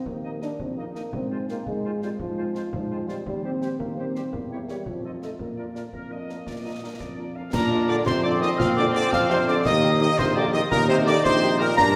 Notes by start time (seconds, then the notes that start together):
0.06 D#2 A#3, concert bass drum
0.24 A#3 D#4 D#5
0.41 A#3 D4 D#4 D#5, snare
0.60 A#1 C4, concert bass drum
0.77 A#3 D#4 D#5
0.95 A#3 D#4 D#5, snare
1.13 G#2 C4, concert bass drum
1.30 G#3 C4 F4 C5
1.48 G#3 A#3 C4 F4 C5, snare
1.66 G#2 G#3, concert bass drum
1.84 G#3 C4 F4 C5
2.02 G3 G#3 C4 F4 C5, snare
2.19 G#2 F3, concert bass drum
2.37 G#3 C4 F4 C5
2.55 G#3 C4 F4 C5, snare
2.73 G#2 F3, concert bass drum
2.90 G#3 C4 F4 C5
3.07 G3 G#3 C4 F4 C5, snare
3.26 D#2 G3, concert bass drum
3.44 G3 C4 G4 C5
3.61 G3 C4 G4 C5, snare
3.79 D#2 A#3, concert bass drum
3.97 G3 C4 G4 C5
4.15 G3 C4 G4 C5, snare
4.33 E2 A#3, concert bass drum
4.51 G3 E4 G4 C#5
4.68 G3 E4 G4 C#5, snare
4.86 F2 F3, concert bass drum
5.04 A3 D#4 F4 A4 C5 D#5
5.21 A3 D#4 F4 A4 C5 D#5, snare
5.39 A#2 A#3, concert bass drum
5.57 A#3 D4 F4 A#4 D5
5.74 A#3 D4 F4 A#4 D5, snare
5.93 F2 A#4, concert bass drum
6.10 A#3 D4 F4 A#4 D#5
6.28 A#3 D4 F4 A#4, snare
6.46 A#2 D5, concert bass drum, snare
6.63 A#3 D4 F4 A#4 D#5
6.82 A#3 D4 F4 A#4
7.00 F2 D5, concert bass drum, snare
7.18 A#3 D4 F4 A#4
7.35 A#3 D4 F4 A#4 F5
7.52 A#2 D4 A#4 A#5, concert bass drum, snare, crash
7.71 G#3 D4 F4
7.88 D3 G#3 D4 F4 D5 D6
8.06 F2 C3 C4 C5 C6, concert bass drum, snare
8.23 D3 G#3 D4 F4 D5 D6
8.40 D#3 G#3 D4 F4 D#5 D#6, snare
8.58 A#2 F3 F5 F6, concert bass drum, snare
8.76 D3 G#3 D4 F4 D5 D6
8.94 D3 G#3 D4 F4 D5 D6, snare
9.11 F2 F3 F5 F6, concert bass drum, snare
9.30 C3 G#3 D4 F4 C5 C6, snare
9.47 D3 G#3 D4 F4 D5 D6, snare
9.65 D#2 D#3 A#3 D#5 D#6, concert bass drum, snare, crash
9.83 A#3 D#4 G4
10.01 D#3 A#3 D#4 G4 D#5 D#6
10.18 A#1 C3 C5 C6, concert bass drum, snare
10.34 D3 A#3 D#4 G4 D5 D6
10.53 D#3 A#3 D#4 G4 D#5 D#6, snare
10.70 D#2 A#2 D#4 A#4 A#5, concert bass drum, snare
10.88 C3 A#3 D#4 G4 C5 C6
11.05 D3 A#3 D#4 G4 D5 D6, snare
11.23 A#1 C3 C5 C6, concert bass drum, snare
11.42 A#3 D#4 G4, snare
11.59 A#2 A#3 D#4 G4 A#4 A#5, snare
11.76 G2 A#3 D4 A#5 A#6, concert bass drum, snare, crash